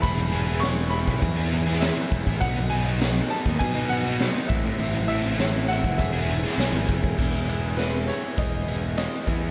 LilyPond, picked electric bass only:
\new Staff \with { instrumentName = "Picked electric bass" } { \clef bass \time 4/4 \key e \major \tempo 4 = 101 e,,4.~ e,,16 b,,16 e,4. e,,16 a,,16 | b,,4.~ b,,16 dis,16 b,4. a,,16 a,16 | a,,4.~ a,,16 fis,,16 e,,4 b,,16 gis,,16 fis,,16 e,,16 | e,,2 e,,4. e,8 | }